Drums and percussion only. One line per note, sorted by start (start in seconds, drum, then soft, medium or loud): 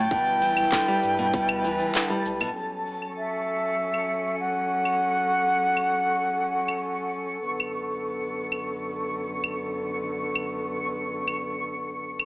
0.11 kick medium
0.11 shaker soft
0.42 shaker medium
0.57 claves medium
0.57 shaker soft
0.72 kick loud
0.72 clap loud
0.72 shaker soft
1.03 shaker medium
1.18 shaker soft
1.34 kick loud
1.34 shaker soft
1.49 claves medium
1.65 shaker medium
1.80 shaker soft
1.90 shaker soft
1.95 clap loud
1.95 shaker soft
2.01 shaker soft
2.26 shaker medium
2.41 claves medium
2.41 shaker soft
3.02 claves medium
3.94 claves medium
4.85 claves medium
5.77 claves medium
6.68 claves medium
7.60 claves medium
8.52 claves medium
9.44 claves medium
10.35 claves medium
11.28 claves medium
12.19 claves medium